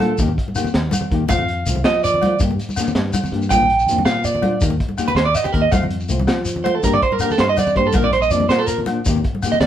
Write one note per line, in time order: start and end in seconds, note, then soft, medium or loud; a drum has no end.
0.00 0.13 A#2 loud
0.00 0.12 F3 medium
0.00 0.12 A#3 medium
0.00 0.13 D4 medium
0.00 0.13 F4 medium
0.00 0.17 A4 medium
0.00 closed hi-hat medium
0.00 high conga loud
0.00 low agogo medium
0.18 0.36 D#2 loud
0.18 0.30 D#3 medium
0.18 0.31 A#3 medium
0.18 0.31 D#4 medium
0.18 0.31 G4 medium
0.18 kick medium
0.18 closed hi-hat medium
0.18 shekere loud
0.28 low conga medium
0.38 kick medium
0.38 closed hi-hat soft
0.48 high conga medium
0.55 0.67 D#3 medium
0.55 0.67 A#3 medium
0.55 0.68 D#4 medium
0.55 0.68 G4 medium
0.55 closed hi-hat soft
0.55 low agogo medium
0.55 shekere medium
0.64 low conga medium
0.64 shekere soft
0.74 0.91 D#2 medium
0.74 snare medium
0.74 closed hi-hat medium
0.74 low conga soft
0.91 closed hi-hat medium
0.91 high conga medium
0.91 low agogo medium
0.91 shekere medium
1.01 low conga medium
1.10 1.28 D#2 medium
1.10 1.22 D#3 medium
1.10 1.23 A#3 medium
1.10 1.23 D#4 medium
1.10 1.24 G4 medium
1.10 kick medium
1.10 closed hi-hat soft
1.29 1.63 F2 medium
1.29 1.41 A3 medium
1.29 1.41 C4 medium
1.29 1.42 F4 medium
1.29 1.81 F5 loud
1.29 kick medium
1.29 closed hi-hat medium
1.29 high conga loud
1.29 low agogo medium
1.29 shekere medium
1.38 low conga medium
1.48 closed hi-hat soft
1.66 1.83 C2 loud
1.66 1.78 A3 medium
1.66 1.79 C4 medium
1.66 1.79 F4 medium
1.66 closed hi-hat soft
1.66 low conga soft
1.66 shekere medium
1.75 high conga medium
1.75 low conga medium
1.84 2.35 F3 loud
1.84 2.03 D#5 medium
1.84 snare medium
1.84 closed hi-hat medium
1.84 low conga soft
1.84 low agogo medium
1.95 low conga soft
2.04 2.38 D5 medium
2.04 closed hi-hat medium
2.04 low conga soft
2.04 shekere medium
2.14 low conga medium
2.22 2.34 A3 medium
2.22 2.35 C4 medium
2.22 2.35 F4 medium
2.22 closed hi-hat medium
2.22 high conga loud
2.22 low agogo medium
2.40 2.57 G2 loud
2.40 2.52 A#3 medium
2.40 2.53 D4 medium
2.40 2.53 G4 medium
2.40 kick medium
2.40 closed hi-hat medium
2.40 shekere loud
2.51 low conga medium
2.59 closed hi-hat medium
2.59 low conga soft
2.59 shekere soft
2.69 high conga medium
2.69 low conga soft
2.69 shekere soft
2.76 2.89 A#3 medium
2.76 2.90 D4 medium
2.76 2.90 G4 medium
2.76 snare soft
2.76 closed hi-hat medium
2.76 low agogo medium
2.76 shekere loud
2.87 low conga medium
2.87 shekere soft
2.95 3.12 G2 medium
2.95 snare medium
2.95 closed hi-hat medium
3.06 low conga soft
3.13 closed hi-hat medium
3.13 high conga medium
3.13 low agogo medium
3.13 shekere loud
3.24 low conga medium
3.24 shekere soft
3.32 3.49 G2 medium
3.32 3.44 A#3 medium
3.32 3.45 D4 medium
3.32 3.46 G4 medium
3.32 closed hi-hat soft
3.42 shekere soft
3.49 3.85 A#1 medium
3.49 3.63 F3 medium
3.49 3.63 A#3 medium
3.49 3.64 D4 medium
3.49 3.64 F4 medium
3.49 4.03 G5 loud
3.49 kick medium
3.49 closed hi-hat medium
3.49 high conga medium
3.49 low agogo medium
3.49 shekere medium
3.62 low conga medium
3.70 closed hi-hat soft
3.79 shekere soft
3.86 4.04 F2 medium
3.86 4.00 F3 medium
3.86 4.00 A#3 medium
3.86 closed hi-hat medium
3.86 low conga soft
3.86 shekere medium
3.91 4.01 D4 medium
3.91 4.01 F4 medium
3.98 high conga medium
3.98 low conga medium
4.05 4.56 A#2 loud
4.05 4.25 F5 loud
4.05 snare medium
4.05 closed hi-hat medium
4.05 low agogo medium
4.05 shekere soft
4.24 4.62 D5 medium
4.24 closed hi-hat soft
4.24 shekere medium
4.35 low conga medium
4.42 4.55 F3 medium
4.42 4.55 A#3 medium
4.42 4.56 D4 medium
4.42 4.56 F4 medium
4.42 closed hi-hat medium
4.42 high conga loud
4.42 low agogo medium
4.61 4.79 D#2 loud
4.61 4.73 D#3 medium
4.61 4.74 A#3 medium
4.61 4.74 D#4 medium
4.61 4.74 G4 medium
4.61 kick medium
4.61 closed hi-hat medium
4.61 shekere medium
4.70 low conga medium
4.80 kick medium
4.80 closed hi-hat soft
4.89 high conga medium
4.97 5.09 D#3 medium
4.97 5.10 A#3 medium
4.97 5.11 D#4 medium
4.97 5.11 G4 medium
4.97 closed hi-hat soft
4.97 low agogo medium
4.97 shekere medium
5.07 5.16 B4 medium
5.07 low conga medium
5.07 shekere soft
5.15 5.33 D#2 loud
5.15 5.25 C5 loud
5.15 snare medium
5.15 closed hi-hat medium
5.25 5.35 D5 medium
5.35 5.45 D#5 medium
5.35 closed hi-hat medium
5.35 low agogo medium
5.35 shekere medium
5.44 5.52 G4 medium
5.44 low conga medium
5.44 shekere soft
5.52 5.71 D#2 loud
5.52 5.65 D#3 medium
5.52 5.66 A#3 medium
5.52 5.67 D#4 medium
5.52 5.67 G4 medium
5.52 5.63 A#4 loud
5.52 kick medium
5.52 closed hi-hat medium
5.62 5.72 D#5 medium
5.71 6.06 F2 loud
5.71 5.83 A3 medium
5.71 5.84 C4 medium
5.71 5.84 F4 medium
5.71 5.83 F5 loud
5.71 kick medium
5.71 closed hi-hat medium
5.71 high conga loud
5.71 low agogo medium
5.71 shekere medium
5.83 low conga medium
5.90 closed hi-hat medium
6.00 shekere soft
6.08 6.26 C2 loud
6.08 6.21 A3 medium
6.08 6.21 C4 medium
6.08 6.22 F4 medium
6.08 closed hi-hat medium
6.08 low conga soft
6.08 shekere medium
6.19 high conga medium
6.19 low conga medium
6.27 6.78 F3 loud
6.27 snare medium
6.27 closed hi-hat medium
6.27 low agogo medium
6.27 shekere soft
6.45 closed hi-hat soft
6.45 shekere medium
6.56 low conga medium
6.64 6.76 A3 medium
6.64 6.77 C4 medium
6.64 6.78 F4 medium
6.64 6.75 C5 medium
6.64 closed hi-hat medium
6.64 high conga medium
6.64 low agogo medium
6.75 6.84 A4 medium
6.83 7.00 G2 loud
6.83 6.95 A#3 medium
6.83 6.96 D4 medium
6.83 6.96 G4 medium
6.83 6.93 A#4 medium
6.83 kick medium
6.83 closed hi-hat medium
6.83 shekere medium
6.94 7.02 D5 loud
6.94 low conga medium
7.02 7.12 C5 medium
7.02 kick medium
7.02 closed hi-hat soft
7.12 7.21 A#4 medium
7.12 high conga medium
7.19 7.32 A#3 medium
7.19 7.33 D4 medium
7.19 7.33 G4 medium
7.19 7.31 A#4 medium
7.19 closed hi-hat medium
7.19 low agogo medium
7.19 shekere medium
7.30 7.40 A4 loud
7.30 low conga medium
7.30 shekere soft
7.38 7.56 G2 loud
7.38 7.49 C5 loud
7.38 snare medium
7.38 closed hi-hat medium
7.38 low conga soft
7.49 7.58 D#5 loud
7.56 7.77 D5 medium
7.56 closed hi-hat medium
7.56 high conga medium
7.56 low agogo medium
7.56 shekere medium
7.66 low conga medium
7.66 shekere soft
7.76 7.93 G2 loud
7.76 7.87 A#3 medium
7.76 7.88 D4 medium
7.76 7.89 G4 medium
7.76 7.86 C5 loud
7.76 kick medium
7.76 closed hi-hat soft
7.87 7.95 A4 medium
7.93 8.28 A#1 loud
7.93 8.06 F3 medium
7.93 8.06 A#3 medium
7.93 8.05 A#4 medium
7.93 kick medium
7.93 closed hi-hat medium
7.93 high conga medium
7.93 low agogo medium
7.93 shekere medium
7.97 8.07 D4 medium
8.02 8.13 D5 loud
8.02 low conga medium
8.13 8.22 C5 loud
8.13 closed hi-hat medium
8.22 8.31 D#5 loud
8.22 shekere soft
8.31 8.48 F2 loud
8.31 8.43 F3 medium
8.31 8.44 A#3 medium
8.31 8.44 D4 medium
8.31 8.49 D5 medium
8.31 closed hi-hat medium
8.31 low conga soft
8.31 shekere medium
8.40 high conga medium
8.40 low conga medium
8.49 8.99 A#2 loud
8.49 8.59 C5 loud
8.49 snare medium
8.49 closed hi-hat medium
8.49 low agogo medium
8.49 shekere soft
8.58 8.68 A4 loud
8.67 8.79 A#4 medium
8.67 closed hi-hat medium
8.67 shekere medium
8.78 low conga medium
8.86 8.99 F3 medium
8.86 9.00 A#3 medium
8.86 closed hi-hat medium
8.86 high conga medium
8.86 low agogo medium
8.91 9.00 D4 medium
9.06 9.22 D#2 loud
9.06 9.17 D#3 medium
9.06 9.18 A#3 medium
9.06 9.19 D#4 medium
9.06 9.19 G4 medium
9.06 kick medium
9.06 closed hi-hat medium
9.06 shekere medium
9.15 low conga medium
9.24 kick medium
9.24 closed hi-hat medium
9.35 high conga medium
9.42 9.54 D#3 medium
9.42 9.55 A#3 medium
9.42 9.55 D#4 medium
9.42 9.55 G4 medium
9.42 closed hi-hat medium
9.42 low agogo medium
9.42 shekere medium
9.52 9.60 D#5 medium
9.52 low conga medium
9.60 9.67 D#2 loud
9.60 9.67 D5 loud
9.60 snare medium
9.60 closed hi-hat medium